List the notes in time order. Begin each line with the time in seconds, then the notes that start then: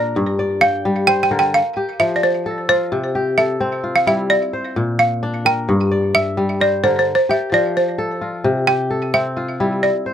Already playing: A#2 D4 E4 A#4 C5 D5
0.16 G2
0.39 D5
0.61 F5 G5
0.85 G3
1.07 C5 G5
1.23 G5
1.31 D3 A#4
1.39 G5
1.54 F5
1.77 G4
2.00 F3 E5
2.16 D5
2.23 C5
2.46 A4
2.69 F4 C5
2.92 C3
3.15 G4
3.38 A4 E5
3.60 C4
3.84 F4
3.96 F5
4.07 G3 E4 E5
4.30 D5
4.53 C5
4.76 A#2
4.99 F5
5.23 D4
5.45 A#4 G5
5.69 G2
5.91 D5
6.14 E5
6.37 G3
6.60 C5 D5
6.84 D3 A#4 C5
6.99 C5
7.15 C5
7.29 G4 E5
7.52 F3 D5
7.77 C5
7.98 A4
8.21 F4
8.44 C3
8.67 G4 G5
8.90 A4
9.14 C4 E5
9.37 F4
9.60 G3 E4
9.83 D5
10.06 C5